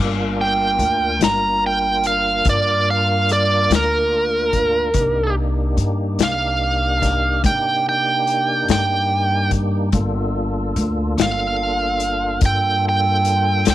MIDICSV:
0, 0, Header, 1, 5, 480
1, 0, Start_track
1, 0, Key_signature, -2, "minor"
1, 0, Tempo, 829876
1, 2862, Time_signature, 12, 3, 24, 8
1, 7952, End_track
2, 0, Start_track
2, 0, Title_t, "Lead electric guitar"
2, 0, Program_c, 0, 29
2, 239, Note_on_c, 0, 79, 77
2, 697, Note_off_c, 0, 79, 0
2, 717, Note_on_c, 0, 82, 64
2, 943, Note_off_c, 0, 82, 0
2, 963, Note_on_c, 0, 79, 63
2, 1186, Note_off_c, 0, 79, 0
2, 1197, Note_on_c, 0, 77, 70
2, 1423, Note_off_c, 0, 77, 0
2, 1443, Note_on_c, 0, 74, 68
2, 1666, Note_off_c, 0, 74, 0
2, 1680, Note_on_c, 0, 77, 61
2, 1904, Note_off_c, 0, 77, 0
2, 1924, Note_on_c, 0, 74, 66
2, 2146, Note_off_c, 0, 74, 0
2, 2171, Note_on_c, 0, 70, 76
2, 3093, Note_off_c, 0, 70, 0
2, 3603, Note_on_c, 0, 77, 74
2, 4291, Note_off_c, 0, 77, 0
2, 4315, Note_on_c, 0, 79, 67
2, 4541, Note_off_c, 0, 79, 0
2, 4563, Note_on_c, 0, 79, 63
2, 5018, Note_off_c, 0, 79, 0
2, 5041, Note_on_c, 0, 79, 74
2, 5497, Note_off_c, 0, 79, 0
2, 6488, Note_on_c, 0, 77, 78
2, 7174, Note_off_c, 0, 77, 0
2, 7205, Note_on_c, 0, 79, 75
2, 7427, Note_off_c, 0, 79, 0
2, 7455, Note_on_c, 0, 79, 66
2, 7905, Note_off_c, 0, 79, 0
2, 7925, Note_on_c, 0, 79, 78
2, 7952, Note_off_c, 0, 79, 0
2, 7952, End_track
3, 0, Start_track
3, 0, Title_t, "Tonewheel organ"
3, 0, Program_c, 1, 16
3, 0, Note_on_c, 1, 58, 54
3, 0, Note_on_c, 1, 62, 58
3, 0, Note_on_c, 1, 65, 56
3, 0, Note_on_c, 1, 70, 58
3, 2835, Note_off_c, 1, 62, 0
3, 2836, Note_off_c, 1, 65, 0
3, 2837, Note_off_c, 1, 58, 0
3, 2838, Note_off_c, 1, 70, 0
3, 2870, Note_on_c, 1, 67, 64
3, 2873, Note_on_c, 1, 58, 60
3, 2873, Note_on_c, 1, 62, 59
3, 2875, Note_on_c, 1, 63, 61
3, 5722, Note_off_c, 1, 67, 0
3, 5724, Note_off_c, 1, 58, 0
3, 5724, Note_off_c, 1, 62, 0
3, 5725, Note_off_c, 1, 63, 0
3, 5750, Note_on_c, 1, 58, 60
3, 5753, Note_on_c, 1, 62, 64
3, 5754, Note_on_c, 1, 65, 64
3, 5754, Note_on_c, 1, 69, 63
3, 7952, Note_off_c, 1, 58, 0
3, 7952, Note_off_c, 1, 62, 0
3, 7952, Note_off_c, 1, 65, 0
3, 7952, Note_off_c, 1, 69, 0
3, 7952, End_track
4, 0, Start_track
4, 0, Title_t, "Upright bass"
4, 0, Program_c, 2, 32
4, 0, Note_on_c, 2, 31, 82
4, 439, Note_off_c, 2, 31, 0
4, 453, Note_on_c, 2, 38, 78
4, 679, Note_off_c, 2, 38, 0
4, 691, Note_on_c, 2, 31, 72
4, 1394, Note_off_c, 2, 31, 0
4, 1421, Note_on_c, 2, 43, 71
4, 2118, Note_off_c, 2, 43, 0
4, 2138, Note_on_c, 2, 38, 72
4, 2837, Note_off_c, 2, 38, 0
4, 2858, Note_on_c, 2, 36, 82
4, 3317, Note_off_c, 2, 36, 0
4, 3337, Note_on_c, 2, 43, 79
4, 3560, Note_off_c, 2, 43, 0
4, 3577, Note_on_c, 2, 36, 74
4, 4276, Note_off_c, 2, 36, 0
4, 4304, Note_on_c, 2, 48, 75
4, 4999, Note_off_c, 2, 48, 0
4, 5026, Note_on_c, 2, 43, 75
4, 5720, Note_off_c, 2, 43, 0
4, 5742, Note_on_c, 2, 31, 93
4, 6199, Note_off_c, 2, 31, 0
4, 6224, Note_on_c, 2, 38, 87
4, 6444, Note_off_c, 2, 38, 0
4, 6464, Note_on_c, 2, 31, 78
4, 7160, Note_off_c, 2, 31, 0
4, 7182, Note_on_c, 2, 43, 75
4, 7879, Note_off_c, 2, 43, 0
4, 7908, Note_on_c, 2, 38, 79
4, 7952, Note_off_c, 2, 38, 0
4, 7952, End_track
5, 0, Start_track
5, 0, Title_t, "Drums"
5, 459, Note_on_c, 9, 42, 46
5, 517, Note_off_c, 9, 42, 0
5, 699, Note_on_c, 9, 42, 63
5, 708, Note_on_c, 9, 38, 91
5, 757, Note_off_c, 9, 42, 0
5, 766, Note_off_c, 9, 38, 0
5, 1178, Note_on_c, 9, 42, 50
5, 1236, Note_off_c, 9, 42, 0
5, 1416, Note_on_c, 9, 42, 67
5, 1420, Note_on_c, 9, 36, 88
5, 1473, Note_off_c, 9, 42, 0
5, 1478, Note_off_c, 9, 36, 0
5, 1904, Note_on_c, 9, 42, 51
5, 1961, Note_off_c, 9, 42, 0
5, 2144, Note_on_c, 9, 42, 71
5, 2153, Note_on_c, 9, 38, 93
5, 2202, Note_off_c, 9, 42, 0
5, 2211, Note_off_c, 9, 38, 0
5, 2620, Note_on_c, 9, 42, 55
5, 2621, Note_on_c, 9, 36, 63
5, 2678, Note_off_c, 9, 42, 0
5, 2679, Note_off_c, 9, 36, 0
5, 2856, Note_on_c, 9, 42, 69
5, 2859, Note_on_c, 9, 36, 87
5, 2914, Note_off_c, 9, 42, 0
5, 2917, Note_off_c, 9, 36, 0
5, 3341, Note_on_c, 9, 42, 51
5, 3399, Note_off_c, 9, 42, 0
5, 3580, Note_on_c, 9, 42, 72
5, 3589, Note_on_c, 9, 38, 93
5, 3638, Note_off_c, 9, 42, 0
5, 3647, Note_off_c, 9, 38, 0
5, 4061, Note_on_c, 9, 36, 70
5, 4063, Note_on_c, 9, 42, 57
5, 4073, Note_on_c, 9, 38, 27
5, 4119, Note_off_c, 9, 36, 0
5, 4121, Note_off_c, 9, 42, 0
5, 4130, Note_off_c, 9, 38, 0
5, 4302, Note_on_c, 9, 36, 92
5, 4303, Note_on_c, 9, 42, 71
5, 4360, Note_off_c, 9, 36, 0
5, 4360, Note_off_c, 9, 42, 0
5, 4785, Note_on_c, 9, 42, 49
5, 4843, Note_off_c, 9, 42, 0
5, 5023, Note_on_c, 9, 42, 72
5, 5033, Note_on_c, 9, 38, 101
5, 5081, Note_off_c, 9, 42, 0
5, 5090, Note_off_c, 9, 38, 0
5, 5501, Note_on_c, 9, 42, 52
5, 5502, Note_on_c, 9, 36, 63
5, 5559, Note_off_c, 9, 42, 0
5, 5560, Note_off_c, 9, 36, 0
5, 5740, Note_on_c, 9, 42, 62
5, 5743, Note_on_c, 9, 36, 87
5, 5798, Note_off_c, 9, 42, 0
5, 5801, Note_off_c, 9, 36, 0
5, 6225, Note_on_c, 9, 42, 46
5, 6283, Note_off_c, 9, 42, 0
5, 6467, Note_on_c, 9, 42, 68
5, 6476, Note_on_c, 9, 38, 95
5, 6525, Note_off_c, 9, 42, 0
5, 6534, Note_off_c, 9, 38, 0
5, 6940, Note_on_c, 9, 42, 51
5, 6998, Note_off_c, 9, 42, 0
5, 7177, Note_on_c, 9, 42, 75
5, 7182, Note_on_c, 9, 36, 92
5, 7235, Note_off_c, 9, 42, 0
5, 7240, Note_off_c, 9, 36, 0
5, 7663, Note_on_c, 9, 42, 56
5, 7720, Note_off_c, 9, 42, 0
5, 7896, Note_on_c, 9, 42, 78
5, 7906, Note_on_c, 9, 38, 97
5, 7952, Note_off_c, 9, 38, 0
5, 7952, Note_off_c, 9, 42, 0
5, 7952, End_track
0, 0, End_of_file